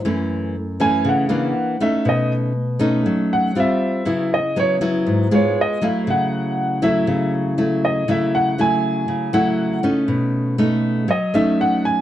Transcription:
<<
  \new Staff \with { instrumentName = "Grand piano" } { \time 4/4 \key fis \dorian \tempo 4 = 120 r4. gis''8 fis''4. e''8 | dis''8 r2 fis''8 e''4~ | e''8 dis''8 cis''8 r4 cis''8 dis''8 eis''8 | fis''4. e''4 r4 dis''8 |
e''8 fis''8 gis''4. fis''4 r8 | r2 dis''8 e''8 fis''8 gis''8 | }
  \new Staff \with { instrumentName = "Nylon-string guitar" } { \time 4/4 \key fis \dorian << { <e a cis'>4 r8 <e a cis'>4 <e ais d'>4 <a cis' dis'>8~ | <a cis' dis'>4 r8 <a cis' dis'>4. <g c' f'>4 | <fis b e'>8 r8 <fis b e'>8 <fis b e'>4 <gis b eis'>4 <fis a e'>8~ | <fis a e'>4. <fis a e'>4. <fis a e'>4 |
<fis a e'>4 <fis a e'>4. <fis a e'>4 <a cis' dis'>8~ | <a cis' dis'>4 <a cis' dis'>4 r8 <a cis' dis'>4. | } \\ { fis,2 cis4 r4 | b,2 fis4 r4 | cis2 gis,4 r4 | cis2 cis2 |
cis2 cis2 | b,2 fis2 | } >> }
>>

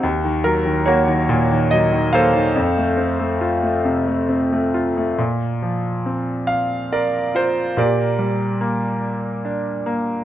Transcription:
<<
  \new Staff \with { instrumentName = "Grand piano" } { \time 3/4 \key f \phrygian \tempo 4 = 71 << { r8 bes'8 des''4 ees''8 f''8~ | f''2 r4 | \key bes \major r4. f''8 d''8 c''8 | d''2~ d''8 r8 | } \\ { r4 <ges' bes'>4. <a' c''>8~ | <a' c''>2 r4 | r2. | <g' bes'>2~ <g' bes'>8 r8 | } >> }
  \new Staff \with { instrumentName = "Grand piano" } { \time 3/4 \key f \phrygian ees,16 ees16 ges16 ees16 bes16 ees16 bes,16 ees16 ges16 ees16 bes16 ees16 | f,16 a16 c'16 a16 f'16 a16 c16 a16 c'16 a16 f'16 a16 | \key bes \major bes,8 f8 c'4 bes'8 f'8 | bes,8 g8 bes4 d'8 bes8 | }
>>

